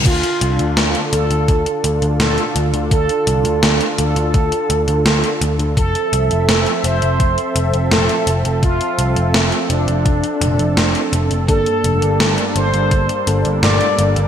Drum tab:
CC |x---------------|----------------|----------------|----------------|
HH |xxxxxxxxxxxxxxxx|xxxxxxxxxxxxxxxx|xxxxxxxxxxxxxxxx|xxxxxxxxxxxxxxxx|
SD |----o-------o---|----o-------o---|----o-------o---|----o-------o---|
T2 |------------o---|----------------|------------o---|----------o-----|
BD |o-------o-------|o-------o-------|o-------o-------|o-------o-------|

CC |----------------|
HH |xxxxxxxxxxxxxxxx|
SD |----o-------o---|
T2 |------------o---|
BD |o-------o-------|